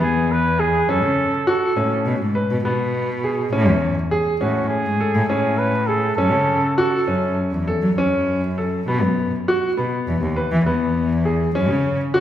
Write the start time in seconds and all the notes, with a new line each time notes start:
0.00 E2 B3 G#4
0.32 B4
0.59 G#4
0.89 F#2 C#4 A4
1.04 C#3
1.47 F#4 A4
1.77 A2 C#4
2.05 B2
2.21 G#2
2.35 B4
2.51 B2
2.65 B2 B3
3.24 G#4
3.53 A2 C#4
3.68 E2
4.11 G#4
4.41 A2 C#4 F#4
4.69 G#4
4.85 G#2
5.00 A4
5.15 A2
5.28 A2 C#4 G#4
5.58 B4
5.87 G#4 A4
6.16 F#2 C#4 A4
6.33 C#3
6.77 F#4 A4
7.07 F#2 C#4
7.52 E2
7.68 A4
7.82 F#3
7.97 F#2 C#4
8.58 A4
8.88 B2 B3
9.03 F#2
9.48 F#4
9.77 B2 B3
10.07 E2
10.22 D#2
10.36 B4
10.51 E3
10.66 E2 B3
11.25 G#4
11.55 F#2 C#4
11.71 C#3
12.14 F#4